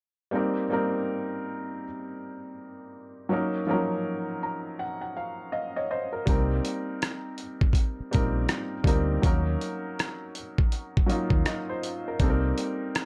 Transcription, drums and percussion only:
6.27 kick loud
6.27 closed hi-hat medium
6.65 closed hi-hat medium
7.02 cross-stick loud
7.02 closed hi-hat medium
7.38 closed hi-hat medium
7.61 kick loud
7.73 kick medium
7.73 closed hi-hat medium
8.13 kick medium
8.13 closed hi-hat medium
8.49 cross-stick loud
8.49 closed hi-hat medium
8.84 kick medium
8.84 closed hi-hat medium
9.23 kick loud
9.23 closed hi-hat medium
9.61 closed hi-hat medium
9.99 cross-stick loud
9.99 closed hi-hat medium
10.35 closed hi-hat medium
10.58 kick medium
10.72 closed hi-hat medium
10.97 kick medium
11.10 closed hi-hat medium
11.30 kick medium
11.46 cross-stick loud
11.46 closed hi-hat medium
11.83 closed hi-hat medium
12.20 kick loud
12.20 closed hi-hat medium
12.58 closed hi-hat medium
12.95 cross-stick loud
12.95 closed hi-hat medium

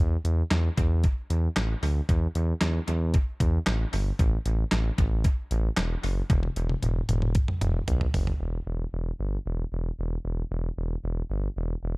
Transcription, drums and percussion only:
0.25 closed hi-hat medium
0.51 snare loud
0.51 clap medium
0.51 closed hi-hat medium
0.78 kick loud
0.78 closed hi-hat medium
1.04 kick loud
1.04 closed hi-hat medium
1.30 closed hi-hat medium
1.56 snare loud
1.56 clap loud
1.56 closed hi-hat medium
1.83 open hi-hat medium
2.09 kick loud
2.09 closed hi-hat medium
2.35 closed hi-hat medium
2.61 snare loud
2.61 clap medium
2.61 closed hi-hat medium
2.88 closed hi-hat medium
3.14 kick loud
3.14 closed hi-hat medium
3.40 kick loud
3.40 closed hi-hat medium
3.67 snare loud
3.67 clap loud
3.67 closed hi-hat medium
3.93 open hi-hat medium
4.19 kick loud
4.19 closed hi-hat medium
4.46 closed hi-hat medium
4.72 snare loud
4.72 clap medium
4.72 closed hi-hat medium
4.98 kick loud
4.98 closed hi-hat medium
5.24 kick loud
5.24 closed hi-hat medium
5.51 closed hi-hat medium
5.77 snare loud
5.77 clap loud
5.77 closed hi-hat medium
6.04 open hi-hat medium
6.30 kick loud
6.30 closed hi-hat medium
6.30 high tom medium
6.43 high tom medium
6.56 closed hi-hat medium
6.69 high tom medium
6.83 closed hi-hat medium
6.83 mid tom medium
7.09 closed hi-hat medium
7.09 mid tom medium
7.22 mid tom medium
7.35 kick loud
7.35 closed hi-hat medium
7.48 mid tom medium
7.61 closed hi-hat medium
7.61 mid tom loud
7.88 closed hi-hat medium
7.88 floor tom loud
8.01 floor tom medium
8.14 floor tom loud
8.14 open hi-hat medium
8.27 floor tom loud

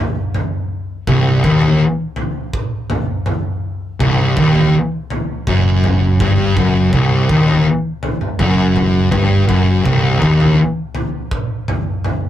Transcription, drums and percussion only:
0.34 floor tom medium
0.34 mid tom medium
1.07 kick loud
1.07 floor tom medium
1.44 kick medium
1.61 floor tom medium
2.16 floor tom medium
2.53 kick loud
2.90 floor tom medium
2.90 mid tom medium
3.26 floor tom medium
3.26 mid tom medium
4.00 kick loud
4.00 floor tom medium
4.37 kick loud
4.55 floor tom medium
5.10 floor tom loud
5.47 kick loud
5.84 floor tom medium
5.84 mid tom medium
6.20 kick loud
6.20 floor tom medium
6.20 mid tom medium
6.57 kick loud
6.93 kick loud
6.93 floor tom medium
7.29 kick loud
7.48 floor tom medium
8.03 floor tom medium
8.21 mid tom medium
8.39 kick loud
8.76 floor tom loud
8.76 mid tom medium
9.11 kick loud
9.11 floor tom medium
9.11 mid tom medium
9.49 kick loud
9.49 mid tom medium
9.85 kick loud
9.85 floor tom medium
10.22 kick medium
10.40 floor tom medium
10.95 floor tom loud
11.31 kick loud
11.68 floor tom loud
11.68 mid tom medium
12.04 floor tom medium
12.04 mid tom medium

